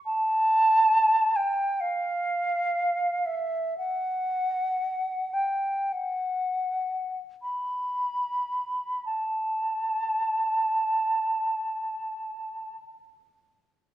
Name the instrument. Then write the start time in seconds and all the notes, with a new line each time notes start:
flute
0.06 A5
1.36 G5
1.80 F5
3.26 E5
3.78 F#5
5.34 G5
5.92 F#5
7.42 B5
9.06 A5